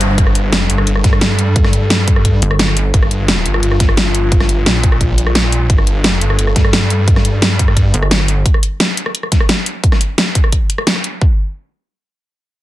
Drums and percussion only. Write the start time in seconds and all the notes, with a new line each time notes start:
0.01 closed hi-hat
0.18 kick, closed hi-hat
0.27 cross-stick
0.35 closed hi-hat
0.53 snare, closed hi-hat
0.70 closed hi-hat
0.78 cross-stick
0.87 closed hi-hat
0.96 cross-stick
1.04 kick, snare, closed hi-hat
1.13 cross-stick
1.21 snare, closed hi-hat
1.39 closed hi-hat
1.56 kick, closed hi-hat
1.64 cross-stick, snare
1.73 closed hi-hat
1.90 snare, closed hi-hat
2.08 kick, closed hi-hat
2.16 cross-stick
2.25 kick, closed hi-hat
2.42 closed hi-hat
2.51 cross-stick
2.59 snare, closed hi-hat
2.68 cross-stick
2.77 closed hi-hat
2.94 kick, closed hi-hat
3.03 cross-stick
3.11 closed hi-hat
3.28 snare, closed hi-hat
3.46 closed hi-hat
3.54 cross-stick
3.63 closed hi-hat
3.71 cross-stick
3.80 kick, snare, closed hi-hat
3.89 cross-stick
3.97 snare, closed hi-hat
4.15 closed hi-hat
4.32 kick, closed hi-hat
4.40 cross-stick, snare
4.49 closed hi-hat
4.66 snare, closed hi-hat
4.83 kick, closed hi-hat
4.92 cross-stick
5.01 kick, closed hi-hat
5.18 closed hi-hat
5.27 cross-stick
5.35 snare, closed hi-hat
5.44 cross-stick
5.52 closed hi-hat
5.70 kick, closed hi-hat
5.78 cross-stick
5.87 closed hi-hat
6.04 snare, closed hi-hat
6.21 closed hi-hat
6.30 cross-stick
6.39 closed hi-hat
6.47 cross-stick
6.56 kick, snare, closed hi-hat
6.65 cross-stick
6.73 snare, closed hi-hat
6.90 closed hi-hat
7.08 kick, closed hi-hat
7.16 cross-stick, snare
7.25 closed hi-hat
7.42 snare, closed hi-hat
7.59 kick, closed hi-hat
7.68 cross-stick
7.77 kick, closed hi-hat
7.94 closed hi-hat
8.03 cross-stick
8.11 snare, closed hi-hat
8.20 cross-stick
8.28 closed hi-hat
8.46 kick, closed hi-hat
8.54 cross-stick
8.63 closed hi-hat
8.80 snare, closed hi-hat
8.97 closed hi-hat
9.06 cross-stick
9.15 closed hi-hat
9.23 cross-stick
9.32 kick, snare, closed hi-hat
9.40 cross-stick
9.49 snare, closed hi-hat
9.66 closed hi-hat
9.84 kick, closed hi-hat
9.92 cross-stick, snare
10.01 closed hi-hat
10.18 snare, closed hi-hat
10.35 kick, closed hi-hat
10.44 cross-stick
10.52 kick, closed hi-hat
10.70 closed hi-hat
10.78 cross-stick
10.87 snare, closed hi-hat
10.96 cross-stick
11.04 closed hi-hat
11.22 kick